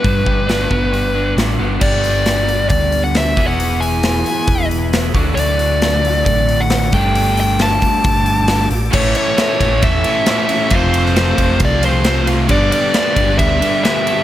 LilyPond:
<<
  \new Staff \with { instrumentName = "Lead electric guitar" } { \time 4/4 \key g \lydian \tempo 4 = 135 b'2. r4 | d''2 d''8. fis''16 e''8. fis''16~ | fis''8 gis''2 r4. | d''2 d''8. fis''8. g''8~ |
g''8 g''8 a''2~ a''8 r8 | cis''8 cis''4. e''4 e''4 | c''2 d''8 c''4 r8 | d''8 d''4. e''4 e''4 | }
  \new Staff \with { instrumentName = "Tonewheel organ" } { \time 4/4 \key g \lydian << { r1 | <c' d' e' f' g' a' b' c'' d'' e'' f''>8 r2. r8 | r1 | r1 |
r1 | r1 | r1 | r1 | } \\ { r1 | <d' g' b'>2.~ <d' g' b'>8 <e' gis' b'>8~ | <e' gis' b'>2.~ <e' gis' b'>8 <e' fis' d''>8~ | <e' fis' d''>2.~ <e' fis' d''>8 <g' a' d''>8~ |
<g' a' d''>1 | <e' a' cis''>1 | <f' a' c''>1 | <g' b' d''>1 | } >> }
  \new Staff \with { instrumentName = "Overdriven electric guitar" } { \time 4/4 \key g \lydian <g b d'>8 g8 d'8 b8 g8 d'8 g8 b8 | <g b d' g'>2.~ <g b d' g'>8 <e b e' gis'>8~ | <e b e' gis'>2.~ <e b e' gis'>8 <d fis a d' fis'>8~ | <d fis a d' fis'>2.~ <d fis a d' fis'>8 <g a d' g'>8~ |
<g a d' g'>2.~ <g a d' g'>8 r8 | <a, e a cis' e'>4 <a, e a cis' e'>4. <a cis' e'>8 <e a cis' e'>8 <a cis' e'>8 | <f a c' f'>4 <f a c' f'>4. <a c' f'>8 <f a c' f'>8 <a c' f'>8 | <g, d g b d'>4 <g, d g b d'>4. <g b d'>8 <d g b d'>8 <g b d'>8 | }
  \new Staff \with { instrumentName = "Overdriven electric guitar" } { \clef bass \time 4/4 \key g \lydian r1 | r1 | r1 | r1 |
r1 | <a, e a>4. <a, e a>2~ <a, e a>8 | <f, c f>4. <f, c f>2~ <f, c f>8 | <g, d g>4. <g, d g>2~ <g, d g>8 | }
  \new Staff \with { instrumentName = "Fingered electric bass" } { \clef bass \time 4/4 \key g \lydian g,8 g,,4 g,,4. a,,8 g,,8 | g,,2 d,4. e,,8~ | e,,4. r8 e,,4. d,8 | d,2 a,,4. g,,8~ |
g,,4. r8 g,,4. a,,8 | a,,8 r4 a,,8 e,8 r4. | f,,4. f,,8 c,2 | g,,8 r4 g,,8 d,8 r4. | }
  \new DrumStaff \with { instrumentName = "Drums" } \drummode { \time 4/4 <hho bd>8 bd8 <hho sn>8 bd8 hho4 <hho sn>4 | <cymc bd>8 hho8 <hho sn>8 hho8 <hho bd>8 hho8 <hho sn>8 <hho bd>8 | hho8 hho8 <hho sn>8 hho8 <hho bd>8 hho8 <hho sn>8 <hho bd>8 | hho8 hho8 <hho sn>8 hho8 <hho bd>8 hho8 <hho sn>8 <hho bd>8 |
hho8 hho8 <hho sn>8 <hho bd>8 <hho bd>8 hho8 <hho sn>8 hho8 | <cymc bd>8 cymr8 <cymr sn>8 <bd cymr>8 <bd cymr>8 cymr8 <cymr sn>8 cymr8 | <bd cymr>8 cymr16 sn16 <cymr sn>8 <bd cymr>8 <bd cymr>8 cymr8 <cymr sn>8 cymr8 | <bd cymr>8 cymr8 <cymr sn>8 <bd cymr>8 <bd cymr>8 cymr8 <cymr sn>8 cymr8 | }
>>